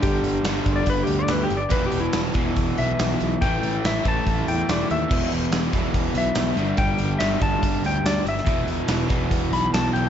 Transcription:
<<
  \new Staff \with { instrumentName = "Electric slide guitar" } { \time 4/4 \key e \minor \tempo 4 = 142 g'4 \tuplet 3/2 { r4 d''8 b'8 g'8 d''8 b'8 g'8 d''8 } | \tuplet 3/2 { b'8 g'8 e'8 } r4. e''4. | g''4 e''8 a''4 g''8 d''8 e''8~ | e''8 r2 e''4. |
g''4 e''8 a''4 g''8 d''8 e''8~ | e''8 r2 b''8 a''8 g''8 | }
  \new Staff \with { instrumentName = "Overdriven electric guitar" } { \clef bass \time 4/4 \key e \minor <g, d g>4 <g, d g>2~ <g, d g>8 r8 | <e, b, e>4. <e, b, e>2~ <e, b, e>8 | <a, e a>4. <a, e a>2~ <a, e a>8 | <e, b, e>4. <e, b, e>2 <g, d g>8~ |
<g, d g>4 <g, d g>2~ <g, d g>8 r8 | <e, b, e>4. <e, b, e>2~ <e, b, e>8 | }
  \new Staff \with { instrumentName = "Picked electric bass" } { \clef bass \time 4/4 \key e \minor g,,8 g,,8 g,,8 g,,8 g,,8 d,8 d,8 g,,8 | e,,8 e,,8 e,,8 e,,8 e,,8 b,,8 b,,8 b,,8 | a,,8 a,,8 a,,8 a,,8 a,,8 e,8 e,,8 dis,8 | e,,8 e,,8 e,,8 e,,8 e,,8 b,,8 b,,8 g,,8 |
g,,8 g,,8 g,,8 g,,8 g,,8 d,8 d,8 g,,8 | e,,8 e,,8 e,,8 e,,8 e,,8 b,,8 b,,8 b,,8 | }
  \new DrumStaff \with { instrumentName = "Drums" } \drummode { \time 4/4 <hh bd>8 hh8 <hh sn tamb>8 <hh bd>8 <hh bd>8 hh8 <hh sn tamb>8 hh8 | <hh bd>8 hh8 <hh sn tamb>8 <hh bd sn>8 <hh bd>8 hh8 <hh sn tamb>8 hh8 | <hh bd>8 hh8 <hh sn tamb>8 <hh bd>8 <hh bd>8 hh8 <hh sn tamb>8 hh8 | <cymc bd>8 hh8 <hh sn tamb>8 <hh bd sn>8 <hh bd>8 hh8 <hh sn tamb>8 hh8 |
<hh bd>8 hh8 <hh sn tamb>8 <hh bd>8 <hh bd>8 hh8 <hh sn tamb>8 hh16 sn16 | <hh bd>8 hh8 <hh sn tamb>8 <hh bd sn>8 <hh bd>8 hh8 <hh sn tamb>8 hh8 | }
>>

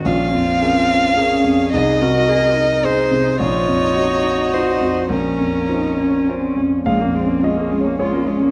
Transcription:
<<
  \new Staff \with { instrumentName = "Violin" } { \time 3/4 \key bes \minor \tempo 4 = 106 f''2. | ees''2 c''4 | des''2 c''4 | bes'2 r4 |
f'16 des'16 f'16 des'16 f'16 des'16 f'16 des'16 f'16 des'16 f'16 des'16 | }
  \new Staff \with { instrumentName = "Grand piano" } { \time 3/4 \key bes \minor << { r2. | r2. | r2. | r2. |
f''4 ees''4 des''4 | } \\ { bes,,8 f,8 <des' aes' bes'>8 des'8 <des' aes' bes'>8 f,8 | c,8 c8 <ees' aes' ees''>8 ees'8 <ees' aes' ees''>8 c8 | bes,,8 f,8 <ees' f' ees''>8 ees'8 <ees' f' ees''>8 f,8 | bes,,8 f,8 <des' f' c''>8 des'8 <des' f' c''>8 f,8 |
\tuplet 3/2 { bes,,8 f,8 des'8 f'8 aes'8 des''8 aes'8 f'8 des'8 } | } >> }
  \new Staff \with { instrumentName = "Cello" } { \time 3/4 \key bes \minor des'8 c'4. des'4 | ees'8 ges'8 aes'8 ees'4. | f'4 ges'2 | des'4 ees'8 des'8 c'8 des'8 |
bes8 c'8 des'4 f'8 des'8 | }
  \new Staff \with { instrumentName = "Viola" } { \time 3/4 \key bes \minor f'8 f'4. aes'4 | aes'8 bes'4. aes'4 | ees'2. | des'2~ des'8. r16 |
aes16 bes16 aes16 bes16 aes16 bes16 aes16 bes16 aes16 bes16 aes16 bes16 | }
>>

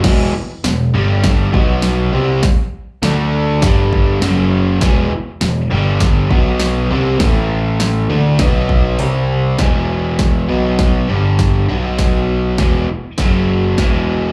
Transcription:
<<
  \new Staff \with { instrumentName = "Overdriven electric guitar" } { \clef bass \time 4/4 \key e \minor \tempo 4 = 100 <e, b, e>8 r8 <e, b,>8 <g, d g>4 <b, fis b>4 <c g c'>8 | r4 <d a d'>4 <g, d g>4 <fis, cis fis>4 | <e, b, e>8 r8 <e, b,>8 <g, d g>4 <b, fis b>4 <c g c'>8 | <a, e a>4. <d a d'>8 <b, fis b>4 <c g c'>4 |
<e, b, e>4. <b, fis b>4 <g, d g>4 <b, fis b>8~ | <b, fis b>4 <e, b, e>8 r8 <fis, cis fis>4 <e, b, e>4 | }
  \new Staff \with { instrumentName = "Picked electric bass" } { \clef bass \time 4/4 \key e \minor e,,8 r8 e,,8 g,,4 b,,4 c,8 | r4 d,4 g,,4 fis,,4 | e,,8 r8 e,,8 g,,4 b,,4 c,8 | a,,4. d,8 b,,4 c,4 |
e,,4. b,,4 g,,4 b,,8~ | b,,4 e,,8 r8 fis,,4 e,,4 | }
  \new DrumStaff \with { instrumentName = "Drums" } \drummode { \time 4/4 <cymc bd sn>4 <hho sn>4 <hho bd sn>8 bd8 <hho sn>4 | <hho bd sn>4 <hho sn>4 <hho bd sn>8 bd8 <hho sn>4 | <hho bd sn>4 <hho sn>4 <hho bd sn>8 bd8 <hho sn>4 | <hho bd sn>4 <hho sn>4 <hho bd sn>8 bd8 hho4 |
<hho bd sn>4 <hho bd sn>4 <hho bd sn>4 <hho bd sn>4 | <hho bd sn>4 <hho bd sn>4 <hho bd sn>4 <hho bd sn>4 | }
>>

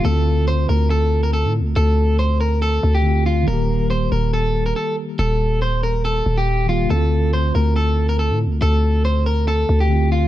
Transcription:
<<
  \new Staff \with { instrumentName = "Clean electric guitar" } { \time 4/4 \key d \phrygian \tempo 4 = 140 a'4 c''8 bes'8 a'8. bes'16 a'8 r8 | a'4 c''8 bes'8 a'8. g'8. f'8 | bes'4 c''8 bes'8 a'8. bes'16 a'8 r8 | a'4 c''8 bes'8 a'8. g'8. f'8 |
a'4 c''8 bes'8 a'8. bes'16 a'8 r8 | a'4 c''8 bes'8 a'8. g'8. f'8 | }
  \new Staff \with { instrumentName = "Tine electric piano" } { \time 4/4 \key d \phrygian <d a c' f'>1~ | <d a c' f'>2. <d a c' f'>4 | <ees g bes g'>1~ | <ees g bes g'>2.~ <ees g bes g'>8 <ees g bes g'>8 |
<d a c' f'>1~ | <d a c' f'>2. <d a c' f'>4 | }
  \new Staff \with { instrumentName = "808-style bass" } { \clef bass \time 4/4 \key d \phrygian d,4. d,4.~ d,16 a,16. d,16. | d,2~ d,8 d,4. | ees,,4. ees,,4. r4 | ees,,2~ ees,,8 ees,,4. |
d,4. d,4.~ d,16 a,16. d,16. | d,2~ d,8 d,4. | }
>>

